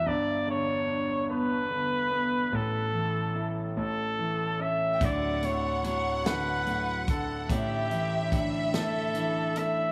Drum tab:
HH |------|------|xxxxxx|xxxxxx|
SD |------|------|---o--|---o--|
BD |------|------|o----o|o-o---|